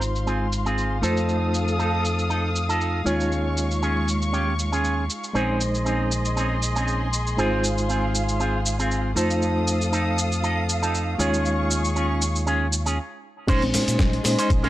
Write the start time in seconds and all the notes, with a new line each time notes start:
Already playing: G#1 G#3 D#4 F4 C5 F5 C6
0.02 shaker
0.16 shaker
0.26 C4 F4 G#4, shaker
0.52 shaker
0.65 C4 F4 G#4, shaker
0.78 shaker
1.02 F2 A3 D#4 F4 A4 C5 D#6, shaker
1.17 shaker
1.29 shaker
1.54 shaker
1.68 shaker
1.79 D#4 F4 A4, shaker
2.05 shaker
2.19 shaker
2.30 D#4 F4 A4, shaker
2.56 shaker
2.69 D#4 F4 A4, shaker
2.81 shaker
3.04 D#2 G#3 C#4 D#4 F4 G#4 C#5 C#6, shaker
3.20 shaker
3.32 shaker
3.57 shaker
3.71 shaker
3.82 C#4 F4 G#4, shaker
4.08 shaker
4.22 shaker
4.33 C#4 F4 G4, shaker
4.59 shaker
4.72 C#4 F4 G#4, shaker
4.84 shaker
5.10 shaker
5.24 shaker
5.34 A#1 G#3 C4 C#4 D#4 G#4 C5 D#5 C6, shaker
5.61 shaker
5.75 shaker
5.85 C4 C#4 D#4 G#4, shaker
6.12 shaker
6.25 shaker
6.36 C4 C#4 D#4 G#4, shaker
6.62 shaker
6.76 C4 C#4 D#4 G#4, shaker
6.88 shaker
7.13 shaker
7.27 shaker
7.37 G#1 G#3 C4 D#4 F4 G#4 C5 F5, shaker
7.64 shaker
7.78 shaker
7.89 C4 F4 G#4, shaker
8.15 shaker
8.29 shaker
8.40 C4 F4 G#4, shaker
8.66 shaker
8.79 C4 F4 G#4, shaker
8.91 shaker
9.15 F2 A3 D#4 F4 A4 C5 F5 D#6, shaker
9.30 shaker
9.42 shaker
9.67 shaker
9.81 shaker
9.92 D#4 F4 A4, shaker
10.18 shaker
10.32 shaker
10.43 D#4 F4 A4, shaker
10.69 shaker
10.82 D#4 F4 A4, shaker
10.95 shaker
11.18 D#2 G#3 C#4 D#4 F4 G#4 C#5 C#6, shaker
11.34 shaker
11.45 shaker
11.71 shaker
11.85 shaker
11.96 C#4 F4 G#4, shaker
12.22 shaker
12.36 shaker
12.46 C#4 F4 G#4, shaker
12.73 shaker
12.86 C#4 F4 G#4, shaker
13.47 A#1 G#3 C#4 D#4 G#4 C5 D#5 C6, kick, closed hi-hat, crash, shaker
13.62 closed hi-hat, high conga
13.74 A#2, muted clean electric guitar stroke, open hi-hat, ride, high bongo, shaker
13.88 A#2, closed hi-hat, shaker
13.99 A#1, kick, snare, closed hi-hat, low conga, shaker
14.13 closed hi-hat
14.24 A#2 G#3 C#4 D#4 C5, muted clean electric guitar stroke, open hi-hat, ride, high bongo, shaker
14.38 C#4 D#4 G#4 C5, closed hi-hat, shaker
14.50 A#1, kick, closed hi-hat, shaker
14.63 C#4 D#4 G#4 C5, closed hi-hat, high bongo